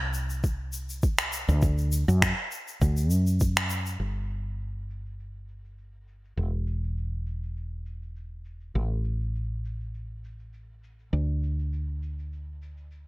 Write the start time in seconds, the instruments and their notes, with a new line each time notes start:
Already playing: fretless electric bass C2
0.14 shaker
0.30 shaker
0.43 kick, shaker
0.73 shaker
0.89 shaker
1.02 kick, shaker
1.18 finger snap, shaker
1.32 shaker
1.49 fretless electric bass D2, shaker
1.62 kick, shaker
1.78 shaker
1.92 shaker
2.08 fretless electric bass F#2, shaker
2.22 finger snap, kick, shaker
2.51 shaker
2.68 shaker
2.81 fretless electric bass D2, kick, shaker
2.97 shaker
3.10 fretless electric bass F#2, shaker
3.27 shaker
3.40 kick, shaker
3.57 finger snap, shaker
3.70 shaker
3.86 shaker
4.00 fretless electric bass G1
4.29 shaker
4.47 shaker
4.60 shaker
4.90 shaker
5.05 shaker
5.19 shaker
5.48 shaker
5.64 shaker
5.78 shaker
6.08 shaker
6.25 shaker
6.37 fretless electric bass E1
6.67 shaker
6.83 shaker
6.97 shaker
7.26 shaker
7.43 shaker
7.56 shaker
7.86 shaker
8.02 shaker
8.16 shaker
8.45 shaker
8.61 shaker
8.75 fretless electric bass A1, shaker
9.04 shaker
9.20 shaker
9.35 shaker
9.65 shaker
9.80 shaker
9.94 shaker
10.24 shaker
10.39 shaker
10.53 shaker
10.84 shaker
10.99 shaker
11.13 fretless electric bass D2, shaker
11.43 shaker
11.59 shaker
11.73 shaker
12.03 shaker
12.19 shaker
12.33 shaker
12.62 shaker
12.77 shaker
12.91 shaker